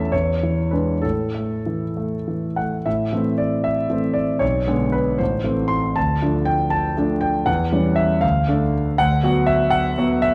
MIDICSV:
0, 0, Header, 1, 2, 480
1, 0, Start_track
1, 0, Key_signature, 0, "minor"
1, 0, Tempo, 606673
1, 815, Time_signature, 6, 3, 24, 8
1, 2262, Tempo, 519031
1, 4662, Tempo, 505051
1, 9308, End_track
2, 0, Start_track
2, 0, Title_t, "Grand piano"
2, 0, Program_c, 0, 0
2, 0, Control_c, 0, 64, 127
2, 0, Note_on_c, 0, 40, 47
2, 0, Note_on_c, 0, 52, 35
2, 0, Note_on_c, 0, 57, 35
2, 0, Note_on_c, 0, 61, 36
2, 0, Note_on_c, 0, 76, 65
2, 0, Note_on_c, 0, 81, 68
2, 80, Note_off_c, 0, 61, 0
2, 94, Note_on_c, 0, 73, 60
2, 96, Note_off_c, 0, 76, 0
2, 104, Note_off_c, 0, 40, 0
2, 104, Note_on_c, 0, 40, 42
2, 110, Control_c, 0, 64, 0
2, 112, Note_off_c, 0, 52, 0
2, 115, Note_off_c, 0, 81, 0
2, 117, Note_off_c, 0, 57, 0
2, 241, Control_c, 0, 64, 127
2, 342, Note_on_c, 0, 52, 34
2, 562, Note_on_c, 0, 71, 45
2, 567, Note_off_c, 0, 73, 0
2, 571, Note_on_c, 0, 56, 31
2, 574, Note_on_c, 0, 62, 34
2, 722, Note_off_c, 0, 52, 0
2, 792, Note_off_c, 0, 56, 0
2, 794, Note_off_c, 0, 62, 0
2, 798, Note_off_c, 0, 40, 0
2, 803, Note_on_c, 0, 69, 49
2, 812, Note_off_c, 0, 71, 0
2, 815, Note_on_c, 0, 45, 38
2, 833, Control_c, 0, 64, 0
2, 1004, Control_c, 0, 64, 127
2, 1065, Note_on_c, 0, 57, 31
2, 1315, Note_on_c, 0, 52, 31
2, 1454, Note_off_c, 0, 57, 0
2, 1556, Note_on_c, 0, 57, 31
2, 1697, Note_off_c, 0, 52, 0
2, 1801, Note_on_c, 0, 52, 30
2, 1939, Note_off_c, 0, 57, 0
2, 2027, Note_off_c, 0, 69, 0
2, 2028, Note_on_c, 0, 78, 49
2, 2036, Note_on_c, 0, 57, 28
2, 2179, Note_off_c, 0, 52, 0
2, 2229, Note_off_c, 0, 45, 0
2, 2259, Note_off_c, 0, 78, 0
2, 2259, Note_on_c, 0, 76, 52
2, 2263, Note_off_c, 0, 57, 0
2, 2263, Note_on_c, 0, 45, 44
2, 2278, Control_c, 0, 64, 0
2, 2425, Control_c, 0, 64, 127
2, 2502, Note_off_c, 0, 45, 0
2, 2510, Note_on_c, 0, 52, 35
2, 2518, Note_on_c, 0, 57, 33
2, 2523, Note_on_c, 0, 60, 35
2, 2741, Note_on_c, 0, 74, 53
2, 2750, Note_off_c, 0, 76, 0
2, 2982, Note_on_c, 0, 76, 60
2, 2984, Note_off_c, 0, 74, 0
2, 3189, Note_off_c, 0, 52, 0
2, 3194, Note_off_c, 0, 57, 0
2, 3196, Note_off_c, 0, 60, 0
2, 3222, Note_on_c, 0, 52, 33
2, 3225, Note_on_c, 0, 57, 33
2, 3231, Note_on_c, 0, 60, 36
2, 3442, Note_on_c, 0, 74, 56
2, 3460, Note_off_c, 0, 76, 0
2, 3663, Note_off_c, 0, 52, 0
2, 3665, Note_off_c, 0, 57, 0
2, 3668, Note_off_c, 0, 60, 0
2, 3681, Note_on_c, 0, 73, 59
2, 3691, Note_off_c, 0, 74, 0
2, 3693, Note_on_c, 0, 35, 47
2, 3719, Control_c, 0, 64, 0
2, 3858, Control_c, 0, 64, 127
2, 3930, Note_off_c, 0, 35, 0
2, 3941, Note_on_c, 0, 50, 32
2, 3944, Note_on_c, 0, 56, 33
2, 3944, Note_on_c, 0, 59, 38
2, 4171, Note_on_c, 0, 71, 58
2, 4174, Note_off_c, 0, 73, 0
2, 4389, Note_off_c, 0, 50, 0
2, 4391, Note_off_c, 0, 56, 0
2, 4391, Note_off_c, 0, 59, 0
2, 4412, Note_on_c, 0, 72, 59
2, 4417, Note_on_c, 0, 33, 43
2, 4419, Note_off_c, 0, 71, 0
2, 4442, Control_c, 0, 64, 0
2, 4588, Control_c, 0, 64, 127
2, 4650, Note_off_c, 0, 33, 0
2, 4651, Note_on_c, 0, 52, 36
2, 4653, Note_on_c, 0, 57, 37
2, 4656, Note_on_c, 0, 60, 37
2, 4875, Note_on_c, 0, 84, 70
2, 4895, Note_off_c, 0, 72, 0
2, 5100, Note_off_c, 0, 52, 0
2, 5101, Note_off_c, 0, 57, 0
2, 5103, Note_off_c, 0, 60, 0
2, 5130, Note_off_c, 0, 84, 0
2, 5139, Note_on_c, 0, 81, 68
2, 5149, Note_on_c, 0, 38, 46
2, 5160, Control_c, 0, 64, 0
2, 5310, Control_c, 0, 64, 127
2, 5377, Note_off_c, 0, 38, 0
2, 5391, Note_on_c, 0, 53, 37
2, 5394, Note_on_c, 0, 57, 36
2, 5397, Note_on_c, 0, 62, 40
2, 5613, Note_on_c, 0, 79, 68
2, 5616, Note_off_c, 0, 81, 0
2, 5849, Note_on_c, 0, 81, 71
2, 5854, Note_off_c, 0, 79, 0
2, 6066, Note_off_c, 0, 53, 0
2, 6067, Note_off_c, 0, 57, 0
2, 6069, Note_off_c, 0, 62, 0
2, 6106, Note_on_c, 0, 57, 38
2, 6107, Note_on_c, 0, 53, 39
2, 6116, Note_on_c, 0, 62, 44
2, 6327, Note_on_c, 0, 79, 71
2, 6338, Note_off_c, 0, 81, 0
2, 6547, Note_off_c, 0, 57, 0
2, 6548, Note_off_c, 0, 53, 0
2, 6552, Note_off_c, 0, 62, 0
2, 6566, Note_on_c, 0, 78, 74
2, 6575, Note_off_c, 0, 79, 0
2, 6575, Note_on_c, 0, 40, 52
2, 6600, Control_c, 0, 64, 0
2, 6722, Control_c, 0, 64, 127
2, 6809, Note_off_c, 0, 40, 0
2, 6819, Note_on_c, 0, 52, 38
2, 6819, Note_on_c, 0, 55, 41
2, 6826, Note_on_c, 0, 61, 44
2, 7040, Note_on_c, 0, 76, 71
2, 7049, Note_off_c, 0, 78, 0
2, 7258, Note_off_c, 0, 55, 0
2, 7259, Note_off_c, 0, 52, 0
2, 7262, Note_off_c, 0, 61, 0
2, 7280, Note_on_c, 0, 77, 74
2, 7287, Note_on_c, 0, 38, 52
2, 7288, Note_off_c, 0, 76, 0
2, 7314, Control_c, 0, 64, 0
2, 7476, Control_c, 0, 64, 127
2, 7526, Note_off_c, 0, 38, 0
2, 7541, Note_on_c, 0, 57, 45
2, 7544, Note_on_c, 0, 62, 47
2, 7771, Note_off_c, 0, 77, 0
2, 7981, Note_off_c, 0, 57, 0
2, 7983, Note_off_c, 0, 62, 0
2, 8016, Note_on_c, 0, 78, 89
2, 8020, Note_on_c, 0, 38, 60
2, 8035, Control_c, 0, 64, 0
2, 8205, Control_c, 0, 64, 127
2, 8250, Note_off_c, 0, 38, 0
2, 8251, Note_on_c, 0, 54, 41
2, 8261, Note_on_c, 0, 66, 50
2, 8263, Note_on_c, 0, 59, 43
2, 8474, Note_on_c, 0, 76, 79
2, 8494, Note_off_c, 0, 78, 0
2, 8702, Note_on_c, 0, 78, 88
2, 8724, Note_off_c, 0, 76, 0
2, 8935, Note_off_c, 0, 54, 0
2, 8940, Note_off_c, 0, 66, 0
2, 8941, Note_off_c, 0, 59, 0
2, 8963, Note_on_c, 0, 54, 46
2, 8964, Note_on_c, 0, 59, 44
2, 8968, Note_on_c, 0, 66, 48
2, 9191, Note_on_c, 0, 76, 85
2, 9203, Note_off_c, 0, 78, 0
2, 9308, Note_off_c, 0, 54, 0
2, 9308, Note_off_c, 0, 59, 0
2, 9308, Note_off_c, 0, 66, 0
2, 9308, Note_off_c, 0, 76, 0
2, 9308, End_track
0, 0, End_of_file